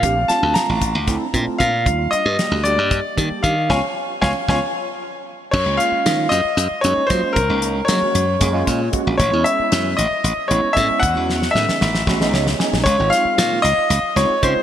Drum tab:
CC |--------------|--------------|--------------|x-------------|
HH |x-x-x-x-x-x-x-|x-x-x-x-x-x-x-|--------------|--x-x-x-x-x-x-|
SD |--o-o---o-----|----o---------|o---o-o-------|----o-------o-|
BD |o-----o-o-o-o-|o-------o-o-o-|o---o-o-------|o-----------o-|

CC |--------------|--------------|--------------|--------------|
HH |x-x-x-x-x-x-x-|x-x-x-x-x-x-x-|x-------------|x-x-x-x-x-x-x-|
SD |----o---o-o---|----o-------o-|--oooooooooooo|--o-o---o-o---|
BD |o-------o-o-o-|o-----------o-|o-------o-----|o-----------o-|